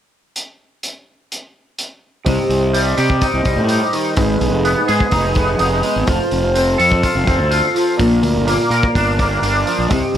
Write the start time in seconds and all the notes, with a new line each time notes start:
0.36 closed hi-hat
0.83 closed hi-hat
1.32 closed hi-hat
1.78 closed hi-hat
2.25 C2 C3 G4 C5 D#5, kick, open hi-hat
2.49 C2, open hi-hat
2.74 G3, open hi-hat
2.97 C3 G4, open hi-hat
3.10 kick
3.21 D#4, kick, open hi-hat
3.34 C2
3.45 C2 G3, kick, open hi-hat
3.57 A2
3.69 D#4, open hi-hat
3.93 D#3, open hi-hat
4.17 G#1 G#2 G#4 B4 D#5, kick, open hi-hat
4.40 B1, open hi-hat
4.53 F1
4.65 B3, open hi-hat
4.88 G#2 G#4, open hi-hat
5.00 kick
5.11 F1 D#4, kick, open hi-hat
5.35 B3, kick, open hi-hat
5.59 F1 D#4, open hi-hat
5.83 G#3, open hi-hat
5.96 G#1
6.06 F1 F3 A4 C5 F5, kick, open hi-hat
6.31 F1, open hi-hat
6.55 C4, open hi-hat
6.78 F2 A4, open hi-hat
6.92 kick
7.03 F4, kick, open hi-hat
7.15 F1
7.27 F1 C4, kick, open hi-hat
7.39 D2
7.51 F4, open hi-hat
7.74 F3, open hi-hat
7.97 A#1 A#2 A#4 D5, kick, open hi-hat
8.23 D2, open hi-hat
8.35 G1
8.47 A#3, open hi-hat
8.70 A#2 A#4, open hi-hat
8.83 kick
8.95 G1 D4, kick, open hi-hat
9.19 A#3, kick, open hi-hat
9.42 G1 D4, open hi-hat
9.66 F3, open hi-hat
9.78 A#1
9.89 C2 C3 G4 C5 D#5, kick, open hi-hat
10.14 C2